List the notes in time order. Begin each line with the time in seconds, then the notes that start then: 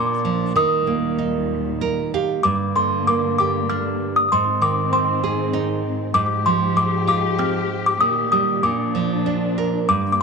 Already playing: A#2 F3 D4 D6
0.25 F3
0.56 D#2 D#3 G3 D#6
0.87 A#3
1.19 D#4
1.81 A#4
2.14 G4 F5
2.43 G2 D3 A#3 D6
2.75 D3 C6
3.07 A#3 D6
3.38 G4 D6
3.70 D4 F6
4.16 D#6
4.32 G#2 D#3 C4 C6
4.62 D#3 D6
4.93 C4 C6
5.24 G#4
5.53 D#4
6.14 G#2 F3 G4 D6
6.46 F3 C6
6.76 G#3 D6
7.07 F4 D6
7.38 C4 F6
7.86 D6
8.00 A#2 D#3 D#6
8.32 G3 D#6
8.63 A#2 F3 D4 D6
8.95 F3
9.26 D4
9.58 A#4
9.89 G2 D3 A#3 D6
10.12 D6